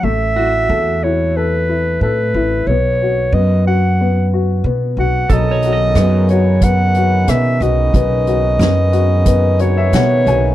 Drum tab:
HH |--------|--------|xxxxxxxx|xxxxxxxx|
SD |--------|--------|--r---r-|--o---o-|
BD |--------|--------|o---o---|o---o---|